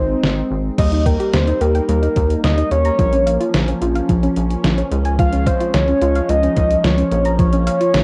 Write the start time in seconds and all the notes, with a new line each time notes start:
Already playing: G#1 G#3 C4 D#4 C5
0.24 G#1, snare
0.51 G#1
0.79 D#2 G3 A#3 D#4 D#5, kick, closed hi-hat, crash
0.92 D#4, closed hi-hat
1.06 A#4 G5, kick, closed hi-hat
1.20 G4, closed hi-hat
1.34 D#2 G3 C5, snare, closed hi-hat
1.48 D#4, closed hi-hat
1.61 D#2 G4 A#4, closed hi-hat
1.75 G5, closed hi-hat
1.89 D#2 G3 A#4, closed hi-hat
2.02 D#4, closed hi-hat
2.16 D#2, kick, closed hi-hat
2.30 closed hi-hat
2.44 D#2 G3 D#5, snare, closed hi-hat
2.58 D#4, closed hi-hat
2.71 D#2 A#3 C#5, closed hi-hat
2.85 A#5, closed hi-hat
2.99 A#1 F3 C#4, kick, closed hi-hat
3.12 C#4, closed hi-hat
3.26 F5, closed hi-hat
3.40 F4, closed hi-hat
3.54 A#1 F3, snare, closed hi-hat
3.68 C#4, closed hi-hat
3.81 A#1 F4, closed hi-hat
3.95 F5, closed hi-hat
4.09 A#1 F3, kick, closed hi-hat
4.23 C#4, closed hi-hat
4.36 A#1, closed hi-hat
4.50 closed hi-hat
4.64 A#1 F3, snare, closed hi-hat
4.78 C#4, closed hi-hat
4.92 C#2 F3 G#3, closed hi-hat
5.05 G#5, closed hi-hat
5.19 F3 F5, kick, closed hi-hat
5.33 C#4, closed hi-hat
5.47 C5 F5, kick, closed hi-hat
5.60 F4, closed hi-hat
5.74 C#2 F3 C#5, snare, closed hi-hat
5.88 C#4, closed hi-hat
6.01 C#2 F4, closed hi-hat
6.15 F5, closed hi-hat
6.29 C#2 F3 D#5, closed hi-hat
6.43 C#4, closed hi-hat
6.56 C#2, kick, closed hi-hat
6.71 closed hi-hat
6.84 C#2 F3 C#5, snare, closed hi-hat
6.98 C#4, closed hi-hat
7.12 A#1 A#3 C#4, closed hi-hat
7.25 A#5, closed hi-hat
7.39 F3 C#5, kick, closed hi-hat
7.53 C#4, closed hi-hat
7.67 F5, closed hi-hat
7.80 F4, closed hi-hat
7.94 A#1 F3, snare, closed hi-hat